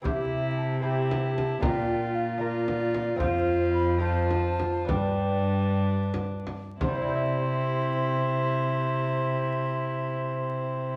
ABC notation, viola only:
X:1
M:6/8
L:1/8
Q:3/8=68
K:C
V:1 name="Viola"
E3 E3 | F3 F3 | F3 F3 | D4- D z |
E6- | E6 |]